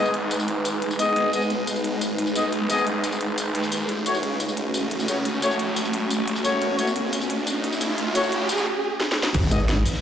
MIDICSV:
0, 0, Header, 1, 8, 480
1, 0, Start_track
1, 0, Tempo, 340909
1, 1638, Time_signature, 4, 2, 24, 8
1, 14097, End_track
2, 0, Start_track
2, 0, Title_t, "Brass ensemble"
2, 0, Program_c, 0, 61
2, 0, Note_on_c, 0, 59, 93
2, 0, Note_on_c, 0, 68, 87
2, 0, Note_on_c, 0, 75, 102
2, 174, Note_off_c, 0, 59, 0
2, 174, Note_off_c, 0, 68, 0
2, 174, Note_off_c, 0, 75, 0
2, 1396, Note_on_c, 0, 59, 86
2, 1397, Note_on_c, 0, 68, 77
2, 1397, Note_on_c, 0, 75, 98
2, 1848, Note_off_c, 0, 59, 0
2, 1848, Note_off_c, 0, 68, 0
2, 1848, Note_off_c, 0, 75, 0
2, 1877, Note_on_c, 0, 59, 90
2, 1877, Note_on_c, 0, 68, 79
2, 1877, Note_on_c, 0, 75, 97
2, 2013, Note_off_c, 0, 59, 0
2, 2013, Note_off_c, 0, 68, 0
2, 2013, Note_off_c, 0, 75, 0
2, 3317, Note_on_c, 0, 59, 72
2, 3317, Note_on_c, 0, 68, 68
2, 3317, Note_on_c, 0, 75, 81
2, 3453, Note_off_c, 0, 59, 0
2, 3453, Note_off_c, 0, 68, 0
2, 3453, Note_off_c, 0, 75, 0
2, 3797, Note_on_c, 0, 59, 93
2, 3797, Note_on_c, 0, 68, 87
2, 3797, Note_on_c, 0, 75, 105
2, 4014, Note_off_c, 0, 59, 0
2, 4014, Note_off_c, 0, 68, 0
2, 4014, Note_off_c, 0, 75, 0
2, 5716, Note_on_c, 0, 57, 87
2, 5716, Note_on_c, 0, 66, 80
2, 5716, Note_on_c, 0, 73, 95
2, 5852, Note_off_c, 0, 57, 0
2, 5852, Note_off_c, 0, 66, 0
2, 5852, Note_off_c, 0, 73, 0
2, 7157, Note_on_c, 0, 57, 75
2, 7157, Note_on_c, 0, 66, 70
2, 7157, Note_on_c, 0, 73, 82
2, 7293, Note_off_c, 0, 57, 0
2, 7293, Note_off_c, 0, 66, 0
2, 7293, Note_off_c, 0, 73, 0
2, 7637, Note_on_c, 0, 57, 95
2, 7637, Note_on_c, 0, 66, 87
2, 7637, Note_on_c, 0, 73, 104
2, 7854, Note_off_c, 0, 57, 0
2, 7854, Note_off_c, 0, 66, 0
2, 7854, Note_off_c, 0, 73, 0
2, 9076, Note_on_c, 0, 57, 89
2, 9076, Note_on_c, 0, 66, 82
2, 9076, Note_on_c, 0, 73, 101
2, 9528, Note_off_c, 0, 57, 0
2, 9528, Note_off_c, 0, 66, 0
2, 9528, Note_off_c, 0, 73, 0
2, 9557, Note_on_c, 0, 57, 85
2, 9557, Note_on_c, 0, 66, 82
2, 9557, Note_on_c, 0, 73, 95
2, 9693, Note_off_c, 0, 57, 0
2, 9693, Note_off_c, 0, 66, 0
2, 9693, Note_off_c, 0, 73, 0
2, 11476, Note_on_c, 0, 57, 97
2, 11476, Note_on_c, 0, 66, 89
2, 11476, Note_on_c, 0, 73, 101
2, 11694, Note_off_c, 0, 57, 0
2, 11694, Note_off_c, 0, 66, 0
2, 11694, Note_off_c, 0, 73, 0
2, 13397, Note_on_c, 0, 59, 89
2, 13397, Note_on_c, 0, 68, 78
2, 13397, Note_on_c, 0, 75, 96
2, 13533, Note_off_c, 0, 59, 0
2, 13533, Note_off_c, 0, 68, 0
2, 13533, Note_off_c, 0, 75, 0
2, 14097, End_track
3, 0, Start_track
3, 0, Title_t, "Synth drone"
3, 0, Program_c, 1, 95
3, 0, Note_on_c, 1, 56, 76
3, 0, Note_on_c, 1, 63, 73
3, 0, Note_on_c, 1, 68, 74
3, 0, Note_on_c, 1, 71, 89
3, 5421, Note_off_c, 1, 56, 0
3, 5421, Note_off_c, 1, 63, 0
3, 5421, Note_off_c, 1, 68, 0
3, 5421, Note_off_c, 1, 71, 0
3, 5476, Note_on_c, 1, 66, 87
3, 5477, Note_on_c, 1, 57, 78
3, 5477, Note_on_c, 1, 61, 76
3, 12140, Note_off_c, 1, 66, 0
3, 12141, Note_off_c, 1, 57, 0
3, 12141, Note_off_c, 1, 61, 0
3, 13156, Note_on_c, 1, 56, 80
3, 13156, Note_on_c, 1, 63, 73
3, 13156, Note_on_c, 1, 68, 77
3, 13156, Note_on_c, 1, 71, 92
3, 14097, Note_off_c, 1, 56, 0
3, 14097, Note_off_c, 1, 63, 0
3, 14097, Note_off_c, 1, 68, 0
3, 14097, Note_off_c, 1, 71, 0
3, 14097, End_track
4, 0, Start_track
4, 0, Title_t, "Detuned saw bass"
4, 0, Program_c, 2, 39
4, 0, Note_on_c, 2, 35, 97
4, 178, Note_off_c, 2, 35, 0
4, 197, Note_on_c, 2, 32, 93
4, 1618, Note_off_c, 2, 32, 0
4, 1637, Note_on_c, 2, 32, 100
4, 2098, Note_off_c, 2, 32, 0
4, 2117, Note_on_c, 2, 35, 97
4, 2818, Note_off_c, 2, 35, 0
4, 2837, Note_on_c, 2, 32, 100
4, 3298, Note_off_c, 2, 32, 0
4, 3317, Note_on_c, 2, 35, 102
4, 4018, Note_off_c, 2, 35, 0
4, 4037, Note_on_c, 2, 30, 93
4, 4258, Note_off_c, 2, 30, 0
4, 4277, Note_on_c, 2, 32, 98
4, 4978, Note_off_c, 2, 32, 0
4, 4997, Note_on_c, 2, 39, 92
4, 5458, Note_off_c, 2, 39, 0
4, 5477, Note_on_c, 2, 33, 101
4, 5938, Note_off_c, 2, 33, 0
4, 5957, Note_on_c, 2, 37, 94
4, 6658, Note_off_c, 2, 37, 0
4, 6677, Note_on_c, 2, 33, 97
4, 7138, Note_off_c, 2, 33, 0
4, 7157, Note_on_c, 2, 37, 103
4, 7858, Note_off_c, 2, 37, 0
4, 7877, Note_on_c, 2, 33, 98
4, 9298, Note_off_c, 2, 33, 0
4, 9317, Note_on_c, 2, 33, 98
4, 9778, Note_off_c, 2, 33, 0
4, 9797, Note_on_c, 2, 37, 98
4, 10498, Note_off_c, 2, 37, 0
4, 10517, Note_on_c, 2, 33, 96
4, 10978, Note_off_c, 2, 33, 0
4, 10997, Note_on_c, 2, 37, 102
4, 11698, Note_off_c, 2, 37, 0
4, 11717, Note_on_c, 2, 33, 98
4, 12197, Note_off_c, 2, 33, 0
4, 13157, Note_on_c, 2, 32, 101
4, 13378, Note_off_c, 2, 32, 0
4, 14097, End_track
5, 0, Start_track
5, 0, Title_t, "Wobble bass"
5, 0, Program_c, 3, 39
5, 13397, Note_on_c, 3, 32, 97
5, 13858, Note_off_c, 3, 32, 0
5, 14097, End_track
6, 0, Start_track
6, 0, Title_t, "Impact"
6, 0, Program_c, 4, 103
6, 13157, Note_on_c, 4, 60, 77
6, 14097, Note_off_c, 4, 60, 0
6, 14097, End_track
7, 0, Start_track
7, 0, Title_t, "Riser"
7, 0, Program_c, 5, 103
7, 5477, Note_on_c, 5, 60, 77
7, 12197, Note_off_c, 5, 60, 0
7, 14097, End_track
8, 0, Start_track
8, 0, Title_t, "Drums"
8, 77, Note_on_c, 9, 54, 26
8, 197, Note_on_c, 9, 42, 80
8, 218, Note_off_c, 9, 54, 0
8, 337, Note_off_c, 9, 42, 0
8, 436, Note_on_c, 9, 42, 92
8, 436, Note_on_c, 9, 54, 57
8, 557, Note_off_c, 9, 54, 0
8, 557, Note_on_c, 9, 54, 28
8, 577, Note_off_c, 9, 42, 0
8, 677, Note_on_c, 9, 42, 80
8, 698, Note_off_c, 9, 54, 0
8, 818, Note_off_c, 9, 42, 0
8, 917, Note_on_c, 9, 42, 93
8, 917, Note_on_c, 9, 54, 57
8, 1058, Note_off_c, 9, 42, 0
8, 1058, Note_off_c, 9, 54, 0
8, 1157, Note_on_c, 9, 42, 78
8, 1277, Note_on_c, 9, 54, 26
8, 1297, Note_off_c, 9, 42, 0
8, 1397, Note_off_c, 9, 54, 0
8, 1397, Note_on_c, 9, 42, 93
8, 1397, Note_on_c, 9, 54, 58
8, 1538, Note_off_c, 9, 42, 0
8, 1538, Note_off_c, 9, 54, 0
8, 1637, Note_on_c, 9, 42, 77
8, 1778, Note_off_c, 9, 42, 0
8, 1877, Note_on_c, 9, 42, 90
8, 1877, Note_on_c, 9, 54, 57
8, 1997, Note_off_c, 9, 54, 0
8, 1997, Note_on_c, 9, 54, 25
8, 2018, Note_off_c, 9, 42, 0
8, 2117, Note_on_c, 9, 42, 74
8, 2138, Note_off_c, 9, 54, 0
8, 2258, Note_off_c, 9, 42, 0
8, 2357, Note_on_c, 9, 42, 91
8, 2357, Note_on_c, 9, 54, 57
8, 2477, Note_off_c, 9, 54, 0
8, 2477, Note_on_c, 9, 54, 27
8, 2498, Note_off_c, 9, 42, 0
8, 2596, Note_on_c, 9, 42, 74
8, 2618, Note_off_c, 9, 54, 0
8, 2737, Note_off_c, 9, 42, 0
8, 2836, Note_on_c, 9, 42, 88
8, 2836, Note_on_c, 9, 54, 56
8, 2977, Note_off_c, 9, 42, 0
8, 2977, Note_off_c, 9, 54, 0
8, 3076, Note_on_c, 9, 42, 75
8, 3196, Note_on_c, 9, 54, 26
8, 3217, Note_off_c, 9, 42, 0
8, 3316, Note_off_c, 9, 54, 0
8, 3316, Note_on_c, 9, 42, 86
8, 3316, Note_on_c, 9, 54, 58
8, 3457, Note_off_c, 9, 42, 0
8, 3457, Note_off_c, 9, 54, 0
8, 3557, Note_on_c, 9, 42, 75
8, 3697, Note_off_c, 9, 42, 0
8, 3797, Note_on_c, 9, 42, 84
8, 3797, Note_on_c, 9, 54, 55
8, 3917, Note_off_c, 9, 54, 0
8, 3917, Note_on_c, 9, 54, 27
8, 3937, Note_off_c, 9, 42, 0
8, 4036, Note_on_c, 9, 42, 75
8, 4057, Note_off_c, 9, 54, 0
8, 4177, Note_off_c, 9, 42, 0
8, 4277, Note_on_c, 9, 42, 88
8, 4277, Note_on_c, 9, 54, 57
8, 4397, Note_off_c, 9, 54, 0
8, 4397, Note_on_c, 9, 54, 27
8, 4417, Note_off_c, 9, 42, 0
8, 4516, Note_on_c, 9, 42, 75
8, 4538, Note_off_c, 9, 54, 0
8, 4657, Note_off_c, 9, 42, 0
8, 4756, Note_on_c, 9, 42, 88
8, 4756, Note_on_c, 9, 54, 58
8, 4897, Note_off_c, 9, 42, 0
8, 4897, Note_off_c, 9, 54, 0
8, 4997, Note_on_c, 9, 42, 75
8, 5116, Note_on_c, 9, 54, 27
8, 5137, Note_off_c, 9, 42, 0
8, 5237, Note_off_c, 9, 54, 0
8, 5237, Note_on_c, 9, 42, 91
8, 5237, Note_on_c, 9, 54, 60
8, 5377, Note_off_c, 9, 42, 0
8, 5377, Note_off_c, 9, 54, 0
8, 5476, Note_on_c, 9, 42, 77
8, 5617, Note_off_c, 9, 42, 0
8, 5716, Note_on_c, 9, 42, 91
8, 5716, Note_on_c, 9, 54, 60
8, 5837, Note_off_c, 9, 54, 0
8, 5837, Note_on_c, 9, 54, 28
8, 5857, Note_off_c, 9, 42, 0
8, 5957, Note_on_c, 9, 42, 76
8, 5977, Note_off_c, 9, 54, 0
8, 6097, Note_off_c, 9, 42, 0
8, 6197, Note_on_c, 9, 42, 91
8, 6197, Note_on_c, 9, 54, 59
8, 6317, Note_off_c, 9, 54, 0
8, 6317, Note_on_c, 9, 54, 29
8, 6337, Note_off_c, 9, 42, 0
8, 6436, Note_on_c, 9, 42, 77
8, 6457, Note_off_c, 9, 54, 0
8, 6577, Note_off_c, 9, 42, 0
8, 6677, Note_on_c, 9, 42, 89
8, 6677, Note_on_c, 9, 54, 59
8, 6817, Note_off_c, 9, 42, 0
8, 6817, Note_off_c, 9, 54, 0
8, 6917, Note_on_c, 9, 42, 74
8, 7036, Note_on_c, 9, 54, 28
8, 7057, Note_off_c, 9, 42, 0
8, 7157, Note_off_c, 9, 54, 0
8, 7157, Note_on_c, 9, 42, 93
8, 7157, Note_on_c, 9, 54, 62
8, 7297, Note_off_c, 9, 42, 0
8, 7297, Note_off_c, 9, 54, 0
8, 7397, Note_on_c, 9, 42, 81
8, 7537, Note_off_c, 9, 42, 0
8, 7637, Note_on_c, 9, 42, 91
8, 7637, Note_on_c, 9, 54, 64
8, 7757, Note_off_c, 9, 54, 0
8, 7757, Note_on_c, 9, 54, 28
8, 7778, Note_off_c, 9, 42, 0
8, 7877, Note_on_c, 9, 42, 78
8, 7898, Note_off_c, 9, 54, 0
8, 8017, Note_off_c, 9, 42, 0
8, 8117, Note_on_c, 9, 42, 96
8, 8117, Note_on_c, 9, 54, 62
8, 8237, Note_off_c, 9, 54, 0
8, 8237, Note_on_c, 9, 54, 30
8, 8257, Note_off_c, 9, 42, 0
8, 8356, Note_on_c, 9, 42, 79
8, 8377, Note_off_c, 9, 54, 0
8, 8497, Note_off_c, 9, 42, 0
8, 8596, Note_on_c, 9, 42, 93
8, 8596, Note_on_c, 9, 54, 63
8, 8737, Note_off_c, 9, 42, 0
8, 8737, Note_off_c, 9, 54, 0
8, 8837, Note_on_c, 9, 42, 78
8, 8956, Note_on_c, 9, 54, 29
8, 8977, Note_off_c, 9, 42, 0
8, 9077, Note_off_c, 9, 54, 0
8, 9077, Note_on_c, 9, 42, 93
8, 9077, Note_on_c, 9, 54, 61
8, 9217, Note_off_c, 9, 42, 0
8, 9217, Note_off_c, 9, 54, 0
8, 9316, Note_on_c, 9, 42, 82
8, 9457, Note_off_c, 9, 42, 0
8, 9557, Note_on_c, 9, 42, 99
8, 9557, Note_on_c, 9, 54, 61
8, 9677, Note_off_c, 9, 54, 0
8, 9677, Note_on_c, 9, 54, 29
8, 9697, Note_off_c, 9, 42, 0
8, 9797, Note_on_c, 9, 42, 83
8, 9818, Note_off_c, 9, 54, 0
8, 9938, Note_off_c, 9, 42, 0
8, 10037, Note_on_c, 9, 42, 96
8, 10037, Note_on_c, 9, 54, 63
8, 10157, Note_off_c, 9, 54, 0
8, 10157, Note_on_c, 9, 54, 29
8, 10178, Note_off_c, 9, 42, 0
8, 10277, Note_on_c, 9, 42, 83
8, 10298, Note_off_c, 9, 54, 0
8, 10418, Note_off_c, 9, 42, 0
8, 10517, Note_on_c, 9, 42, 94
8, 10517, Note_on_c, 9, 54, 63
8, 10657, Note_off_c, 9, 42, 0
8, 10657, Note_off_c, 9, 54, 0
8, 10756, Note_on_c, 9, 42, 82
8, 10876, Note_on_c, 9, 54, 29
8, 10897, Note_off_c, 9, 42, 0
8, 10996, Note_off_c, 9, 54, 0
8, 10996, Note_on_c, 9, 42, 98
8, 10996, Note_on_c, 9, 54, 64
8, 11137, Note_off_c, 9, 42, 0
8, 11137, Note_off_c, 9, 54, 0
8, 11237, Note_on_c, 9, 42, 88
8, 11377, Note_off_c, 9, 42, 0
8, 11477, Note_on_c, 9, 42, 99
8, 11477, Note_on_c, 9, 54, 60
8, 11597, Note_off_c, 9, 54, 0
8, 11597, Note_on_c, 9, 54, 29
8, 11617, Note_off_c, 9, 42, 0
8, 11717, Note_on_c, 9, 42, 86
8, 11738, Note_off_c, 9, 54, 0
8, 11857, Note_off_c, 9, 42, 0
8, 11957, Note_on_c, 9, 42, 99
8, 11957, Note_on_c, 9, 54, 61
8, 12077, Note_off_c, 9, 54, 0
8, 12077, Note_on_c, 9, 54, 31
8, 12098, Note_off_c, 9, 42, 0
8, 12218, Note_off_c, 9, 54, 0
8, 12677, Note_on_c, 9, 38, 69
8, 12817, Note_off_c, 9, 38, 0
8, 12837, Note_on_c, 9, 38, 82
8, 12978, Note_off_c, 9, 38, 0
8, 12997, Note_on_c, 9, 38, 101
8, 13138, Note_off_c, 9, 38, 0
8, 13156, Note_on_c, 9, 51, 82
8, 13157, Note_on_c, 9, 36, 121
8, 13157, Note_on_c, 9, 42, 100
8, 13157, Note_on_c, 9, 49, 105
8, 13274, Note_on_c, 9, 38, 41
8, 13297, Note_off_c, 9, 51, 0
8, 13298, Note_off_c, 9, 36, 0
8, 13298, Note_off_c, 9, 42, 0
8, 13298, Note_off_c, 9, 49, 0
8, 13390, Note_on_c, 9, 51, 74
8, 13397, Note_on_c, 9, 42, 71
8, 13397, Note_on_c, 9, 54, 60
8, 13415, Note_off_c, 9, 38, 0
8, 13517, Note_off_c, 9, 42, 0
8, 13517, Note_on_c, 9, 42, 39
8, 13531, Note_off_c, 9, 51, 0
8, 13538, Note_off_c, 9, 54, 0
8, 13637, Note_off_c, 9, 42, 0
8, 13637, Note_on_c, 9, 38, 120
8, 13637, Note_on_c, 9, 42, 98
8, 13638, Note_on_c, 9, 51, 86
8, 13643, Note_off_c, 9, 38, 0
8, 13643, Note_on_c, 9, 38, 109
8, 13754, Note_off_c, 9, 38, 0
8, 13754, Note_on_c, 9, 38, 44
8, 13778, Note_off_c, 9, 42, 0
8, 13779, Note_off_c, 9, 51, 0
8, 13877, Note_on_c, 9, 46, 77
8, 13877, Note_on_c, 9, 54, 61
8, 13883, Note_off_c, 9, 46, 0
8, 13883, Note_on_c, 9, 46, 87
8, 13895, Note_off_c, 9, 38, 0
8, 13997, Note_on_c, 9, 38, 36
8, 14018, Note_off_c, 9, 54, 0
8, 14023, Note_off_c, 9, 46, 0
8, 14097, Note_off_c, 9, 38, 0
8, 14097, End_track
0, 0, End_of_file